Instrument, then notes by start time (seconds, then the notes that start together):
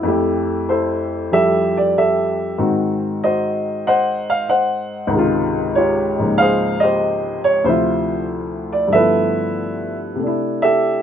upright piano
0.03 F2 A3 E4
0.08 G4
0.69 E4 A4 C5
1.31 F3 G3 G4 A4 E5
1.77 D5
1.98 G4 A4 E5
2.58 G#2 D#3 C4 F#4
3.24 F#4 C5 D#5
3.87 C5 D#5 F#5
4.30 F5
4.49 C5 D#5 F#5
5.07 C#2 G#2 D#3
5.13 C3 G#3
5.18 F4
5.75 F4 G4 C#5
6.19 G#2 C#3 F3 A#3 D#4
6.38 G#4 C5 F5
6.80 G4 C5 D#5
7.44 C#5
7.64 D2 C3 F3 E4 F4 C5
7.69 E5
8.73 D5
8.88 G2 D3
8.92 F3 A3 A4 B4 E5
8.96 B3 E4
10.16 C3 A3
10.23 D4 E4
10.62 G4 A4 E5